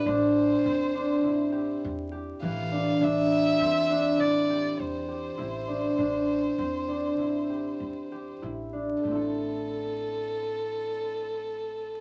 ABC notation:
X:1
M:5/4
L:1/8
Q:1/4=100
K:Am
V:1 name="Violin"
c6 z2 f2 | e4 d2 c4- | c8 z2 | A8- A2 |]
V:2 name="Harp"
D2 C D E G2 G E, D | D2 C D E G2 G E D | D2 C D E G2 G E D | [A,CEA]8- [A,CEA]2 |]
V:3 name="Upright bass" clef=bass
A,,,2 E,,2 A,,,2 E,,2 A,,,2 | A,,,2 E,,2 A,,,2 E,,2 A,,,2 | A,,,2 E,,2 A,,,2 E,,2 A,,,2 | A,,,8- A,,,2 |]